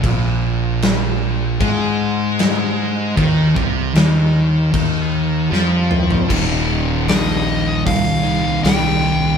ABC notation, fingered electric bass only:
X:1
M:4/4
L:1/8
Q:1/4=77
K:Bbmix
V:1 name="Fingered electric bass" clef=bass
B,,,4 A,,4 | E,, C,, E,,2 E,,2 F,,2 | E,,,2 B,,,2 C,,2 C,,2 |]